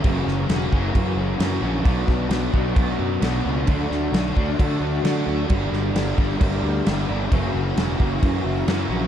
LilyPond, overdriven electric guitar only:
\new Staff \with { instrumentName = "Overdriven electric guitar" } { \time 4/4 \key b \minor \tempo 4 = 132 <fis, cis e ais cis' fis'>4 <e ais cis' fis'>8 <e ais cis' fis'>4. <e ais cis' fis'>8 <e ais cis' fis'>8 | <b, fis b d' fis'>4 <fis b d' fis'>8 <b d' fis'>4. <fis b d' fis'>8 <b d' fis'>8 | <d fis a d' fis'>4 <fis a d' fis'>8 <a d' fis'>4. <fis a d' fis'>8 <a d' fis'>8 | <g, d g bes d' g'>4 <g bes d' g'>8 <g bes d' g'>4. <g bes d' g'>8 <g bes d' g'>8 |
<fis, cis e ais e' fis'>4 <e ais e' fis'>8 <e ais e' fis'>4. <e ais e' fis'>8 <e ais e' fis'>8 | }